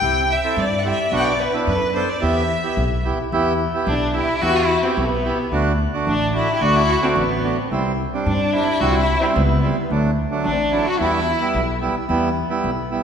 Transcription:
Already playing: violin G5
0.02 upright bass C2, accordion C4 E4 G4
0.30 violin E5
0.44 accordion C4 E4 A4
0.56 upright bass G2, violin D5
0.79 violin F#5
0.85 accordion C4 E4 G4, violin E5
1.12 upright bass B1, accordion B3 D4 F#4, violin F#5
1.18 violin F#5 G5
1.22 violin D5 F#5
1.28 violin D5
1.40 violin B4
1.53 accordion B3 D4 E4
1.67 upright bass F#2, violin B4
1.75 violin A4
1.81 violin B4
1.94 accordion B3 D4 A4, violin C5
2.09 violin D5
2.21 upright bass E2, accordion B3 E4 G4, violin E5
2.63 accordion B3 E4 G4
2.77 upright bass B1
3.05 accordion B3 E4 G4
3.32 upright bass E2, accordion B3 E4 G4
3.74 accordion B3 E4 G4
3.86 upright bass B1, violin D4
4.14 accordion B3 E4 G4, violin E4
4.41 upright bass E2, accordion B3 E4 G4, violin F#4
4.55 violin E4
4.83 accordion B3 E4 G4, violin C4
4.96 upright bass B1, violin B3
5.03 violin A3
5.10 violin B3
5.25 accordion B3 E4 G4
5.52 upright bass D2, accordion A3 D4 F#4
5.93 accordion A3 D4 F#4
6.07 upright bass A1, violin D4
6.34 accordion A3 D4 F#4, violin E4
6.55 violin G4
6.61 upright bass D2, accordion A3 D4 F#4, violin F#4
6.76 violin E4
7.02 accordion A3 D4 F#4, violin C4
7.16 upright bass A1, violin B3
7.44 accordion A3 D4 F#4
7.58 violin C4
7.71 upright bass C2, accordion G3 C4 E4
8.13 accordion G3 C4 D4
8.25 upright bass G2, violin D4
8.33 violin C4
8.40 violin D4
8.53 accordion G3 C4 D4, violin E4
8.80 upright bass C2, accordion G3 C4 E4, violin F#4
8.93 violin E4
9.21 accordion G3 C4 E4, violin C4
9.34 upright bass C#2, violin B3
9.63 accordion G3 C4 E4
9.90 upright bass D2, accordion F#3 A3 D4
10.31 accordion F#3 A3 D4
10.44 upright bass A1, violin D4
10.52 violin C4
10.58 violin D4
10.72 accordion F#3 A3 D4, violin E4
10.85 violin F#4
10.99 upright bass E2, accordion G3 B3 E4, violin E4
11.06 violin F#4
11.12 violin E4
11.41 accordion G3 B3 E4
11.54 upright bass B1
11.81 accordion G3 B3 E4
12.09 upright bass E2, accordion G3 B3 E4
12.50 accordion G3 B3 E4
12.64 upright bass B1
12.91 accordion G3 B3 E4

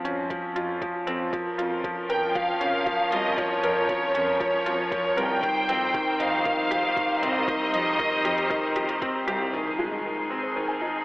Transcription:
Already playing: upright piano F3 C4 C#4 F4
0.05 cello section F2, upright piano C#4, closed hi-hat
0.30 upright piano F3, kick, closed hi-hat
0.55 cello section F2, upright piano F4, closed hi-hat
0.82 upright piano F3, kick, closed hi-hat
1.07 cello section F2, upright piano C4, closed hi-hat
1.33 string quartet F3 C#4 A#4, upright piano F3, kick, closed hi-hat
1.58 cello section F2, upright piano F4, closed hi-hat
1.84 upright piano F3, kick, closed hi-hat
2.10 cello section F2, upright piano A#4, violin section G5, closed hi-hat
2.35 upright piano F3, violin section F5, kick, closed hi-hat
2.61 cello section F2, upright piano C#4, closed hi-hat
2.86 upright piano F3, kick, closed hi-hat
3.12 cello section C2, upright piano F4, violin section D#5, closed hi-hat
3.38 upright piano F3, violin section C#5, kick, closed hi-hat
3.64 cello section F2, upright piano A#4, closed hi-hat
3.89 upright piano F3, kick, closed hi-hat
4.14 cello section F2, upright piano C#4, closed hi-hat
4.40 upright piano F3, kick, closed hi-hat
4.66 cello section F2, upright piano F4, closed hi-hat
4.92 upright piano F3, kick, closed hi-hat
5.17 cello section C2, upright piano A#4, violin section G5, closed hi-hat
5.43 upright piano D#3, string quartet G3 D#4 C5, kick, closed hi-hat
5.69 cello section F2, upright piano C4, closed hi-hat
5.94 upright piano D#3, kick, closed hi-hat
6.20 cello section F2, upright piano D#4, violin section F5, closed hi-hat
6.45 upright piano D#3, kick, closed hi-hat
6.71 cello section F2, upright piano G4, closed hi-hat
6.96 upright piano D#3, kick, closed hi-hat
7.22 cello section C2, upright piano C4, violin section D#5, closed hi-hat
7.48 upright piano D#3, kick, closed hi-hat
7.73 cello section F2, upright piano D#4, closed hi-hat
7.99 upright piano D#3, kick, closed hi-hat
8.25 cello section F2, upright piano G4, closed hi-hat
8.38 closed hi-hat
8.50 upright piano D#3, kick, closed hi-hat
8.76 cello section F2, upright piano G4, closed hi-hat
8.89 closed hi-hat
9.02 upright piano C4, kick, closed hi-hat
9.27 cello section C2, upright piano G4, closed hi-hat
9.53 upright piano D#3, string quartet F3 D#4 G#4, synth arpeggio sound D#4, impact
9.78 upright piano G#3, synth arpeggio sound F4
9.91 synth arpeggio sound D#4
10.05 upright piano D#3
10.30 upright piano C4
10.43 synth arpeggio sound C5
10.56 upright piano D#3, synth arpeggio sound C5
10.68 synth arpeggio sound G#5
10.81 upright piano D#4, synth arpeggio sound F4

